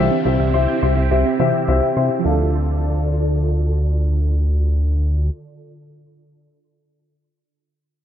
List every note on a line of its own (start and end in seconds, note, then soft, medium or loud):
0.00 2.23 C3 medium
0.00 2.23 C4 medium
0.00 0.16 E4 loud
0.00 2.23 E4 medium
0.00 0.16 G4 medium
0.00 2.23 G4 medium
0.00 0.16 C5 medium
0.00 0.16 E5 loud
0.11 0.19 C4 medium
0.25 0.38 C2 loud
0.25 0.44 E4 medium
0.25 0.33 G4 medium
0.25 0.44 G4 medium
0.25 0.44 C5 medium
0.25 0.44 E5 medium
0.40 0.53 C2 medium
0.40 0.47 E5 medium
0.54 0.67 C2 loud
0.54 0.73 E4 medium
0.54 0.73 G4 medium
0.54 0.73 C5 medium
0.54 0.73 E5 medium
0.54 0.62 C6 medium
0.68 0.76 G6 medium
0.82 0.96 C2 loud
0.82 1.01 E4 medium
0.82 1.01 G4 medium
0.82 1.01 C5 medium
0.82 1.01 E5 medium
0.82 0.90 C6 medium
0.97 1.10 C2 loud
0.97 1.04 E5 medium
1.11 1.24 C2 loud
1.11 1.30 E4 medium
1.11 1.19 G4 medium
1.11 1.30 G4 medium
1.11 1.30 C5 medium
1.11 1.30 E5 medium
1.25 1.33 C4 medium
1.40 1.53 C3 loud
1.40 1.47 E3 medium
1.40 1.58 E4 loud
1.40 1.58 G4 medium
1.40 1.58 C5 medium
1.40 1.58 E5 loud
1.68 1.81 C2 loud
1.68 1.87 E4 loud
1.68 1.87 G4 medium
1.68 1.87 C5 medium
1.68 1.87 E5 loud
1.82 1.90 E5 medium
1.97 2.10 C3 medium
1.97 2.15 E4 medium
1.97 2.15 G4 medium
1.97 2.16 C5 medium
1.97 2.15 E5 medium
1.97 2.04 C6 medium
2.19 5.97 F3 medium
2.19 5.99 F4 medium
2.25 5.30 D2 loud
2.25 5.30 D3 medium
2.25 6.00 D4 medium
2.25 5.30 D4 medium
2.25 5.30 F4 medium
2.25 6.00 A4 medium
2.25 5.30 A4 medium
2.25 6.00 D5 medium
2.25 6.01 F5 medium
2.31 6.03 A4 medium